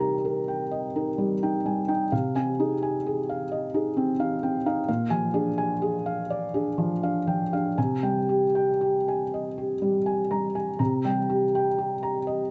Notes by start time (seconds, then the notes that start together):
Already playing: C3 G3 D#4 A#4 G5
0.00 A#5
0.25 A#4
0.48 G5
0.71 D#5
0.96 D#4 A#4
1.18 G3
1.43 D#4 G5
1.65 G3 G#5
1.88 D#4 G5
2.12 C3 F5
2.36 C4 G#5
2.59 D#4 G#4
2.83 G#5
3.06 G#4
3.29 F5
3.52 D#5
3.74 D#4 G#4
3.97 C4
4.19 D#4 F5
4.43 C4 G5
4.66 D#4 F5
4.88 A#2 F5
5.10 F3 G#5
5.34 D4 G#4
5.58 G#5
5.82 G#4
6.06 F5
6.30 D5
6.54 D4 G#4
6.78 F3
7.03 D4 F5
7.27 F3 G5
7.53 D4 F5
7.78 C3 G#5
8.03 G3 G5
8.29 G4
8.55 G5
8.81 G4
9.08 G#5
9.34 D#5
9.58 G4
9.82 G3
10.06 G#5
10.31 G3 A#5
10.55 G#5
10.79 C3 A#5
11.05 G3 G5
11.29 G4
11.55 G5
11.78 G4
12.03 A#5
12.27 D#5